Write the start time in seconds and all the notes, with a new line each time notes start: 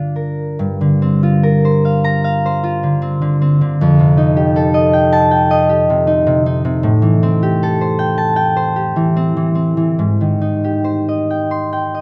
Already playing: G2 D3 D4 F4 G4 A#4 D5 F5
0.16 A#4
0.59 G2
0.81 D3
1.02 C4
1.23 F4
1.43 A#4
1.65 C5
1.85 F5
2.04 A#5
2.24 F5
2.46 C5
2.63 F4
2.83 D3
3.02 C4
3.22 D3
3.42 C4
3.61 D3
3.81 F2
3.99 C3
4.17 D#4
4.37 G4
4.56 A4
4.74 D#5
4.93 G5
5.13 A5
5.31 G5
5.51 D#5
5.70 G4
5.90 C3
6.07 D#4
6.27 C3
6.46 D#4
6.65 C3
6.83 A2
7.02 E3
7.23 C4
7.43 G4
7.63 A4
7.81 C5
7.99 G5
8.18 A5
8.36 G5
8.56 C5
8.76 G4
8.96 E3
9.16 C4
9.37 E3
9.55 C4
9.77 E3
9.99 G#2
10.21 D#3
10.41 D#4
10.64 G4
10.84 C5
11.09 D#5
11.30 G5
11.51 C6
11.73 G5
11.94 D#5